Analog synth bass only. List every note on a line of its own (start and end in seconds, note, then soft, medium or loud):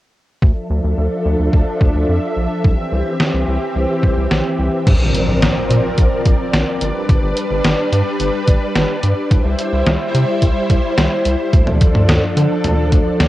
0.42 0.52 D2 loud
0.70 0.80 D2 loud
0.84 0.94 D2 loud
0.98 1.08 D2 loud
1.26 1.36 D2 loud
1.39 1.50 D2 medium
1.53 1.63 D2 medium
1.81 1.91 D2 loud
1.95 2.05 D2 medium
2.09 2.19 F2 medium
2.37 2.47 A#1 medium
2.64 2.75 C2 loud
2.92 3.02 C2 loud
3.34 3.44 C2 loud
3.48 3.58 C2 loud
3.76 3.86 C2 medium
4.03 4.13 C2 medium
4.17 4.27 C2 loud
4.31 4.41 A#1 medium
4.59 4.69 C2 medium
4.87 4.97 A#1 loud
5.00 5.11 A#1 loud
5.28 5.38 A#1 loud
5.42 5.52 A#1 loud
5.70 5.80 A#2 loud
5.98 6.08 A#1 loud
6.25 6.36 A#1 loud
6.53 6.63 A#1 loud
6.81 6.91 G1 loud
7.09 7.19 G1 loud
7.23 7.33 G1 loud
7.51 7.61 G1 loud
7.64 7.75 G1 loud
7.92 8.02 G2 loud
8.20 8.30 G1 loud
8.48 8.58 G1 loud
8.76 8.86 G1 loud
9.03 9.13 G2 medium
9.31 9.41 C2 loud
9.45 9.55 C2 loud
9.73 9.83 C2 loud
9.87 9.97 C2 loud
10.14 10.25 C3 loud
10.42 10.52 C2 loud
10.70 10.80 C2 loud
10.98 11.08 C2 medium
11.26 11.36 C2 loud
11.53 11.63 D2 loud
11.67 11.77 D2 medium
11.95 12.05 D2 medium
12.09 12.19 D2 loud
12.37 12.47 D3 loud
12.64 12.75 D2 loud
12.92 13.02 D2 loud
13.20 13.28 D2 loud